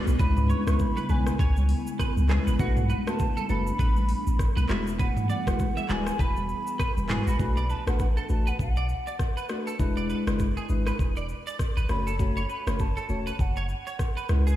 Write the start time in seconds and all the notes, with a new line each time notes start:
Already playing: A3 B3 D4 F#4 B4
0.07 B1, shaker
0.19 C#2 C#3 G#3 C#4 E4 B4 B5, kick, low conga, shaker
0.37 mid tom, high conga, shaker
0.50 C#5 C#6, high conga, shaker
0.67 C#2 G#3 C#4 E4 B4 C#6, cross-stick, shaker
0.79 B5, kick, low conga, shaker
0.97 B4, high conga, shaker
1.09 B1 G#3 C#4 E4 B4 G#5, high conga, low conga, shaker
1.26 cross-stick, shaker
1.39 C#2 C#5, kick, shaker
1.56 high conga, shaker
1.69 open hi-hat, shaker
1.87 shaker
1.99 B4, kick, cross-stick, shaker
2.17 C#2, high conga, shaker
2.29 G#3 C#4 E4 G#4 B4, cross-stick, clap, high conga, shaker
2.47 A1 B4, shaker
2.59 B1 A3 D4 F#4 B4 F#5, kick, low conga, shaker
2.77 mid tom, high conga, shaker
2.90 B4 F#5, high conga, shaker
3.06 A3 D4 F#4 B4 A5, cross-stick, shaker
3.19 kick, low conga, shaker
3.37 A4, high conga, shaker
3.49 F#1 A3 D4 F#4 A4 B4 B5, high conga, low conga, shaker
3.67 shaker
3.79 A1 B4, kick, shaker
3.96 high conga, shaker
4.09 open hi-hat, shaker
4.27 A1, shaker
4.39 kick, cross-stick, shaker
4.57 B1 B4, high conga, shaker
4.69 E1 E3 G#3 E4 F#4 G#4 B4 E5, cross-stick, clap, high conga, shaker
4.87 shaker
4.99 B4 F#5, kick, low conga, shaker
5.17 mid tom, high conga, shaker
5.30 D5 F#5, high conga, shaker
5.46 E1 G#3 E4 F#4 B4, kick, cross-stick, shaker
5.59 kick, low conga, shaker
5.77 E5, high conga, shaker
5.89 D1 G#3 E4 F#4 B4 D5 G#5, clap, high conga, low conga, shaker
6.07 cross-stick, shaker
6.19 E1 B4 B5, kick, shaker
6.37 high conga, shaker
6.49 shaker
6.67 shaker
6.79 B4, kick, cross-stick, shaker
6.97 E1, high conga, shaker
7.09 G#3 E4 F#4 G#4 B4 G#5, cross-stick, clap, mid tom, high conga, shaker
7.27 A1 F#4 B5, shaker
7.39 B1 A3 D4 F#4 B4 B5, kick, shaker
7.57 D5, shaker
7.70 B4 A5, shaker
7.87 A1 A3 D4 F#4 B4 F#5, cross-stick, shaker
7.99 F#5, kick, shaker
8.17 A4, shaker
8.29 A1 A3 D4 F#4 B4 A5, shaker
8.47 B4 F#5, shaker
8.59 B1 F#5, kick, shaker
8.76 D5, shaker
8.89 shaker
9.07 D5, shaker
9.19 kick, cross-stick, shaker
9.37 B4, shaker
9.49 A3 D4 F#4 B4, cross-stick, shaker
9.67 A4, shaker
9.79 E1 G#3 D4 E4 B4, kick, shaker
9.97 D5, shaker
10.10 B4, shaker
10.27 F#1 G#3 D4 E4 B4, cross-stick, shaker
10.39 kick, shaker
10.57 G#4, shaker
10.69 G#1 G#3 D4 E4 B4, shaker
10.87 B4, cross-stick, shaker
10.99 E1, kick, shaker
11.16 D5, shaker
11.29 shaker
11.47 D5, shaker
11.59 kick, cross-stick, shaker
11.77 G#1 B4, shaker
11.89 F#1 A3 C#4 F#4 C#5 B5, cross-stick, shaker
12.07 A4, shaker
12.19 A3 C#4 F#4 C#5, kick, shaker
12.37 C#5, shaker
12.49 B4, shaker
12.66 F#1 A3 C#4 F#4 C#5, cross-stick, shaker
12.79 A5, kick, shaker
12.97 A4, shaker
13.09 E1 A3 C#4 F#4 C#5, shaker
13.27 B4, shaker
13.39 F#1 F#5, kick, shaker
13.56 C#5, shaker
13.69 F#5, shaker
13.87 C#5, shaker
13.99 kick, cross-stick, shaker
14.17 B4, shaker
14.29 C#2 G#3 C#4 E4 B4, cross-stick, shaker
14.47 G#4, shaker